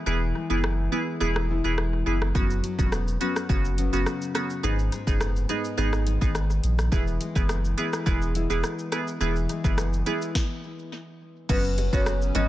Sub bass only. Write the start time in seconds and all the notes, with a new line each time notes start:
0.06 E1
0.50 F#1
1.21 E1
1.64 E1
2.06 F#1
2.35 F#1
2.79 E1
3.49 F#1
3.93 F#1
4.64 G#1
5.07 F#1
5.78 G#1
6.22 G#1
6.64 A#1
6.92 E1
7.36 F#1
8.07 E1
8.50 E1
9.21 E1
9.64 F#1
11.49 F#1
11.93 F#1
12.35 G#1